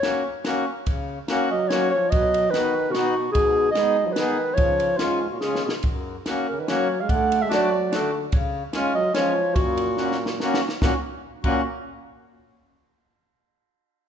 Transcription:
Already playing: clarinet C#5
0.02 accordion A#3 C#4 F#4, snare, ride
0.45 accordion A#3 C#4 F#4, snare, ride
0.86 accordion C#3, kick, ride
1.28 accordion A#3 C#4 F#4, snare, ride
1.51 euphonium F#3, clarinet D#5
1.68 accordion A#3 C#4, clarinet C#5, snare, ride
1.73 euphonium F#3, accordion F#4
1.90 clarinet C#5
1.95 euphonium F3
2.10 accordion B2, euphonium F#3, clarinet D#5, kick, ride
2.34 ride
2.50 euphonium D#3, accordion B3 D#4, clarinet B4, snare, ride
2.55 accordion F#4
2.90 euphonium B2, clarinet F#4
2.94 accordion B3 D#4 F#4, snare, ride
3.32 euphonium B2, clarinet G#4, kick, ride
3.36 accordion G#2
3.72 euphonium G#3, clarinet D#5, snare, ride
3.78 accordion B3 D#4 G#4
4.05 euphonium F3 F#3, clarinet D#5
4.12 euphonium D#3, clarinet B4, snare, ride
4.18 accordion B3 D#4 G#4
4.54 accordion C#3, euphonium F3, clarinet C#5, ride
4.58 kick
4.80 ride
4.97 euphonium G#2, accordion G#3 C#4 F4, clarinet F4, snare, ride
5.30 euphonium A#2, clarinet F#4
5.40 euphonium C#3, accordion G#3 C#4 F4, clarinet G#4, snare
5.55 snare
5.64 euphonium B2, clarinet G#4
5.69 snare
5.83 accordion F#2, kick, ride
6.26 accordion A#3 C#4 F#4, snare, ride
6.48 euphonium C#3, clarinet A#4
6.59 euphonium D#3, clarinet B4
6.68 euphonium F#3, accordion A#3 C#4 F#4, clarinet C#5, snare, ride
7.01 euphonium G#3, clarinet F5
7.08 accordion D3, euphonium A3, clarinet F#5, kick, ride
7.32 ride
7.42 euphonium G#3, clarinet E5
7.49 euphonium F#3, accordion A3 D4 F#4, snare, ride
7.54 clarinet D5
7.92 accordion A3 D4 F#4, snare, ride
7.96 euphonium D3, clarinet A4
8.32 accordion C#3, kick, ride
8.73 accordion G#3 C#4 F4, snare, ride
8.95 euphonium F#3, clarinet D#5
9.14 euphonium F3, accordion G#3 C#4 F4, clarinet C#5, snare, ride
9.55 accordion F#2, euphonium A#2, clarinet F#4, kick, ride
9.77 ride
9.97 accordion A#3 C#4 F#4, snare
10.12 snare
10.26 snare
10.40 accordion A#3 C#4 F#4, snare
10.54 snare
10.69 snare
10.82 euphonium A#2, accordion A#3 C#4 F#4, clarinet F#4, kick, snare
11.44 euphonium A#2, accordion A#3 C#4 F#4, clarinet F#4, kick, crash

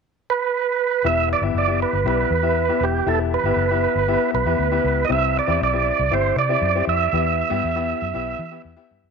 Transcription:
0.30 tonewheel organ B4
1.04 fingered electric bass E1, grand piano E3 B3 E4 G4 E5, tonewheel organ E5
1.33 tonewheel organ D5
1.41 fingered electric bass G1, grand piano B3 E4 G4 E5
1.54 fingered electric bass F#1, tonewheel organ D5
1.67 grand piano B3 E4 G4 E5
1.82 tonewheel organ B4
1.93 fingered electric bass G1
2.05 fingered electric bass B1, grand piano B3 E4 G4 E5, tonewheel organ B4
2.31 fingered electric bass E2
2.43 grand piano B3 E4 G4 E5
2.69 grand piano B3 E4 G4 E5
2.81 fingered electric bass E1, tonewheel organ G4
3.06 fingered electric bass E1, grand piano E3 B3 E4 G4 E5, tonewheel organ A4
3.34 tonewheel organ B4
3.44 fingered electric bass G1, grand piano B3 E4 G4 E5
3.56 fingered electric bass F#1
3.71 grand piano B3 E4 G4 E5
3.95 fingered electric bass G1
4.08 grand piano B3 E4 G4 E5
4.34 fingered electric bass B1, tonewheel organ B4
4.46 fingered electric bass E2, grand piano B3 E4 G4 E5
4.59 fingered electric bass D2
4.71 grand piano B3 E4 G4 E5
4.84 fingered electric bass C#2
5.05 grand piano E4, tonewheel organ D#5
5.09 fingered electric bass C2, grand piano C3 C4 G4 E5, tonewheel organ E5
5.39 tonewheel organ D5
5.47 fingered electric bass E2, grand piano C4 E4 G4 E5
5.61 fingered electric bass B1, tonewheel organ D5
5.73 grand piano C4 E4 G4 E5
5.99 fingered electric bass C2
6.11 fingered electric bass G1, grand piano C4 E4 G4 E5, tonewheel organ C5
6.36 fingered electric bass C3, tonewheel organ D5
6.49 grand piano C4 E4 G4 E5
6.62 fingered electric bass F#2
6.75 grand piano C4 E4 G4 E5
6.87 fingered electric bass F2, tonewheel organ E5
7.13 fingered electric bass E2, grand piano E3 B3 E4 G4 E5
7.50 fingered electric bass G2, grand piano B3 E4 G4 E5
7.64 fingered electric bass E2
7.75 grand piano B3 E4 G4 E5
8.02 fingered electric bass F#2
8.14 fingered electric bass B1, grand piano B3 E4 G4 E5
8.39 fingered electric bass E3
8.52 grand piano B3 E4 G4 E5
8.65 fingered electric bass E2
8.76 grand piano B3 E4 G4 E5
8.91 fingered electric bass G2
9.04 fingered electric bass F#2

